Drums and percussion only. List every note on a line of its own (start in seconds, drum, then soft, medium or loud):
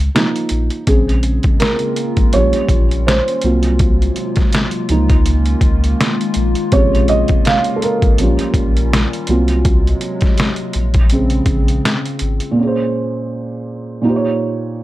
0.16 snare loud
0.16 closed hi-hat medium
0.36 closed hi-hat soft
0.49 closed hi-hat medium
0.70 closed hi-hat soft
0.87 kick loud
0.87 closed hi-hat medium
1.09 closed hi-hat soft
1.23 closed hi-hat medium
1.43 kick medium
1.43 closed hi-hat soft
1.60 snare loud
1.60 closed hi-hat medium
1.79 closed hi-hat soft
1.96 closed hi-hat medium
2.17 kick medium
2.17 closed hi-hat soft
2.33 closed hi-hat medium
2.53 closed hi-hat soft
2.69 kick medium
2.69 closed hi-hat medium
2.91 closed hi-hat soft
3.08 snare loud
3.08 closed hi-hat medium
3.28 closed hi-hat soft
3.42 closed hi-hat medium
3.63 closed hi-hat soft
3.79 kick loud
3.79 closed hi-hat medium
4.02 closed hi-hat soft
4.16 closed hi-hat medium
4.36 kick medium
4.36 snare soft
4.36 closed hi-hat soft
4.53 snare loud
4.53 closed hi-hat medium
4.71 closed hi-hat soft
4.89 closed hi-hat medium
5.10 kick medium
5.10 closed hi-hat soft
5.26 closed hi-hat medium
5.46 closed hi-hat soft
5.61 kick medium
5.61 closed hi-hat medium
5.84 closed hi-hat soft
6.01 snare loud
6.01 closed hi-hat medium
6.21 closed hi-hat soft
6.34 closed hi-hat medium
6.55 closed hi-hat soft
6.72 kick loud
6.72 closed hi-hat medium
6.95 closed hi-hat soft
7.08 closed hi-hat medium
7.28 kick medium
7.28 closed hi-hat soft
7.45 snare loud
7.45 closed hi-hat medium
7.64 closed hi-hat soft
7.82 closed hi-hat medium
8.02 kick medium
8.02 closed hi-hat soft
8.18 closed hi-hat medium
8.39 closed hi-hat soft
8.54 kick medium
8.54 closed hi-hat medium
8.77 closed hi-hat medium
8.93 snare loud
8.93 closed hi-hat medium
9.13 closed hi-hat soft
9.27 closed hi-hat medium
9.48 closed hi-hat soft
9.65 kick loud
9.65 closed hi-hat medium
9.87 closed hi-hat soft
10.01 closed hi-hat medium
10.21 kick medium
10.21 snare soft
10.21 closed hi-hat soft
10.38 snare loud
10.38 closed hi-hat medium
10.56 closed hi-hat soft
10.73 closed hi-hat medium
10.94 kick medium
10.94 closed hi-hat soft
11.10 closed hi-hat medium
11.30 closed hi-hat soft
11.46 kick medium
11.46 closed hi-hat medium
11.68 closed hi-hat soft
11.85 snare loud
11.85 closed hi-hat medium
12.05 closed hi-hat soft
12.19 closed hi-hat medium
12.40 closed hi-hat soft